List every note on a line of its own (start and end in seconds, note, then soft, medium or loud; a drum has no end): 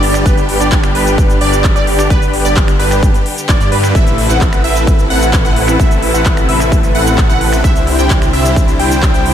0.00 0.23 G1 loud
0.00 3.91 D3 medium
0.00 3.91 G3 medium
0.00 3.91 B3 medium
0.00 0.23 D4 loud
0.00 0.23 G4 medium
0.00 3.91 G4 medium
0.00 0.23 D5 loud
0.00 open hi-hat loud
0.14 finger snap medium
0.14 shaker medium
0.26 0.58 G1 loud
0.26 0.58 D4 medium
0.26 0.58 G4 medium
0.26 0.58 B4 loud
0.26 kick loud
0.26 closed hi-hat medium
0.26 shaker medium
0.37 closed hi-hat soft
0.37 shaker soft
0.49 open hi-hat loud
0.60 0.93 G1 loud
0.60 0.92 D4 medium
0.60 0.92 G4 medium
0.60 0.92 D5 medium
0.60 closed hi-hat soft
0.60 shaker medium
0.72 kick loud
0.72 clap loud
0.72 closed hi-hat medium
0.72 shaker medium
0.83 finger snap medium
0.83 closed hi-hat soft
0.83 shaker soft
0.95 1.39 G1 medium
0.95 1.38 D4 medium
0.95 1.38 G4 medium
0.95 1.38 B4 medium
0.95 1.38 B4 loud
0.95 open hi-hat loud
1.07 closed hi-hat soft
1.07 shaker medium
1.18 kick loud
1.18 closed hi-hat medium
1.18 shaker medium
1.30 closed hi-hat soft
1.30 shaker soft
1.41 1.73 G1 loud
1.41 1.73 D4 loud
1.41 1.73 G4 loud
1.41 1.73 D5 loud
1.41 open hi-hat loud
1.53 closed hi-hat soft
1.53 shaker medium
1.64 kick loud
1.64 clap loud
1.64 closed hi-hat medium
1.64 shaker medium
1.76 2.08 G1 loud
1.76 2.08 D4 loud
1.76 2.08 G4 medium
1.76 2.08 D5 loud
1.76 closed hi-hat soft
1.76 shaker soft
1.87 open hi-hat loud
1.99 finger snap medium
1.99 closed hi-hat soft
1.99 shaker medium
2.10 2.43 G1 loud
2.10 2.42 D4 medium
2.10 2.42 G4 medium
2.10 2.42 B4 loud
2.10 kick loud
2.10 closed hi-hat medium
2.10 shaker medium
2.22 closed hi-hat soft
2.22 shaker soft
2.33 open hi-hat loud
2.45 2.77 G1 loud
2.45 2.77 D4 medium
2.45 2.77 G4 medium
2.45 2.77 D5 medium
2.45 closed hi-hat soft
2.45 shaker medium
2.56 kick loud
2.56 clap loud
2.56 closed hi-hat medium
2.56 shaker medium
2.68 finger snap medium
2.68 closed hi-hat soft
2.68 shaker soft
2.79 3.21 G1 loud
2.79 3.23 D4 medium
2.79 3.23 G4 medium
2.79 3.23 B4 medium
2.79 open hi-hat loud
2.91 finger snap medium
2.91 closed hi-hat soft
2.91 shaker medium
3.03 kick loud
3.03 closed hi-hat medium
3.03 shaker medium
3.14 closed hi-hat soft
3.14 shaker soft
3.26 open hi-hat loud
3.37 closed hi-hat soft
3.37 shaker medium
3.49 3.58 G1 loud
3.49 3.58 D4 medium
3.49 3.58 G4 medium
3.49 3.58 D5 loud
3.49 kick loud
3.49 clap loud
3.49 closed hi-hat medium
3.49 shaker medium
3.60 3.70 G2 loud
3.60 3.69 D4 medium
3.60 3.69 G4 medium
3.60 3.69 D5 medium
3.60 closed hi-hat soft
3.60 shaker soft
3.72 3.93 G2 medium
3.72 3.92 D4 medium
3.72 3.92 G4 medium
3.72 3.92 B4 medium
3.72 3.92 B4 loud
3.72 open hi-hat loud
3.84 finger snap medium
3.84 shaker medium
3.95 4.27 A1 loud
3.95 7.61 C3 medium
3.95 7.61 A3 medium
3.95 4.27 C4 medium
3.95 4.27 E4 medium
3.95 7.61 E4 medium
3.95 4.27 A4 medium
3.95 4.27 B4 medium
3.95 7.61 B4 medium
3.95 4.27 E5 loud
3.95 kick loud
3.95 closed hi-hat medium
3.95 shaker medium
4.07 closed hi-hat soft
4.07 shaker soft
4.18 open hi-hat loud
4.29 4.62 A1 loud
4.29 4.61 C4 medium
4.29 4.61 E4 medium
4.29 4.61 A4 medium
4.29 4.61 B4 medium
4.29 4.61 F#5 medium
4.29 closed hi-hat soft
4.29 shaker medium
4.41 kick loud
4.41 clap loud
4.41 closed hi-hat medium
4.41 shaker medium
4.53 finger snap medium
4.53 closed hi-hat soft
4.53 shaker soft
4.64 5.08 A1 loud
4.64 5.08 C4 medium
4.64 5.08 E4 medium
4.64 5.08 A4 medium
4.64 5.08 B4 medium
4.64 5.08 E5 medium
4.64 open hi-hat loud
4.76 closed hi-hat soft
4.76 shaker medium
4.87 kick loud
4.87 closed hi-hat medium
4.87 shaker medium
4.99 closed hi-hat soft
4.99 shaker soft
5.10 5.43 A1 loud
5.10 5.42 C4 loud
5.10 5.42 E4 loud
5.10 5.42 A4 medium
5.10 5.42 B4 loud
5.10 5.42 F#5 loud
5.10 open hi-hat loud
5.22 closed hi-hat soft
5.22 shaker medium
5.33 kick loud
5.33 clap loud
5.33 closed hi-hat medium
5.33 shaker medium
5.45 5.77 A1 loud
5.45 5.77 C4 loud
5.45 5.77 E4 medium
5.45 5.77 A4 medium
5.45 5.77 B4 medium
5.45 5.77 F#5 loud
5.45 closed hi-hat soft
5.45 shaker soft
5.56 open hi-hat loud
5.68 finger snap medium
5.68 shaker medium
5.79 6.12 A1 loud
5.79 6.11 C4 medium
5.79 6.11 E4 medium
5.79 6.11 A4 medium
5.79 6.11 B4 medium
5.79 6.11 E5 loud
5.79 kick loud
5.79 closed hi-hat medium
5.79 shaker medium
5.91 closed hi-hat soft
5.91 shaker soft
6.02 open hi-hat loud
6.14 6.47 A1 loud
6.14 6.46 C4 medium
6.14 6.46 E4 medium
6.14 6.46 A4 medium
6.14 6.46 B4 medium
6.14 6.46 F#5 medium
6.14 closed hi-hat soft
6.14 shaker medium
6.26 kick loud
6.26 clap loud
6.26 closed hi-hat medium
6.26 shaker medium
6.37 finger snap medium
6.37 closed hi-hat soft
6.37 shaker soft
6.49 6.93 A1 loud
6.49 6.92 C4 medium
6.49 6.92 E4 medium
6.49 6.92 A4 medium
6.49 6.92 B4 medium
6.49 6.92 E5 medium
6.49 6.92 E5 loud
6.49 open hi-hat loud
6.60 finger snap medium
6.60 shaker medium
6.72 kick loud
6.72 closed hi-hat medium
6.72 shaker medium
6.83 closed hi-hat soft
6.83 shaker soft
6.95 7.27 A1 medium
6.95 7.27 C4 loud
6.95 7.27 E4 medium
6.95 7.27 A4 medium
6.95 7.27 B4 medium
6.95 7.27 F#5 loud
6.95 open hi-hat loud
7.07 shaker medium
7.18 kick loud
7.18 clap loud
7.18 closed hi-hat medium
7.18 shaker medium
7.29 7.62 A1 loud
7.29 7.61 C4 loud
7.29 7.61 E4 medium
7.29 7.61 A4 medium
7.29 7.61 B4 medium
7.29 7.61 F#5 loud
7.29 closed hi-hat soft
7.29 shaker soft
7.41 open hi-hat loud
7.53 finger snap medium
7.53 shaker medium
7.64 7.96 C2 loud
7.64 9.34 D3 medium
7.64 9.34 G3 medium
7.64 9.34 C4 medium
7.64 7.96 D4 medium
7.64 7.96 E4 medium
7.64 9.34 E4 medium
7.64 7.96 G4 medium
7.64 7.96 C5 medium
7.64 7.96 E5 loud
7.64 kick loud
7.64 closed hi-hat medium
7.64 shaker medium
7.76 closed hi-hat soft
7.76 shaker soft
7.87 open hi-hat loud
7.99 8.31 C2 medium
7.99 8.31 D4 medium
7.99 8.31 E4 medium
7.99 8.31 G4 medium
7.99 8.31 C5 medium
7.99 8.31 G5 medium
7.99 closed hi-hat soft
7.99 shaker medium
8.10 kick loud
8.10 clap loud
8.10 closed hi-hat medium
8.10 shaker medium
8.22 finger snap medium
8.22 closed hi-hat soft
8.22 shaker soft
8.33 8.77 C2 loud
8.33 8.77 D4 medium
8.33 8.77 E4 medium
8.33 8.77 G4 medium
8.33 8.77 C5 medium
8.33 8.77 E5 medium
8.33 8.77 E5 loud
8.33 open hi-hat loud
8.45 closed hi-hat soft
8.45 shaker medium
8.56 kick loud
8.56 closed hi-hat medium
8.56 shaker medium
8.68 closed hi-hat soft
8.68 shaker soft
8.79 9.12 C2 loud
8.79 9.11 D4 loud
8.79 9.11 E4 medium
8.79 9.11 G4 medium
8.79 9.11 C5 medium
8.79 9.11 G5 loud
8.79 open hi-hat loud
8.91 closed hi-hat soft
8.91 shaker medium
9.03 kick loud
9.03 clap loud
9.03 closed hi-hat medium
9.03 shaker medium
9.14 9.34 C2 loud
9.14 9.34 D4 loud
9.14 9.34 E4 medium
9.14 9.34 G4 medium
9.14 9.34 C5 medium
9.14 9.34 G5 loud
9.14 closed hi-hat soft
9.14 shaker soft
9.26 open hi-hat loud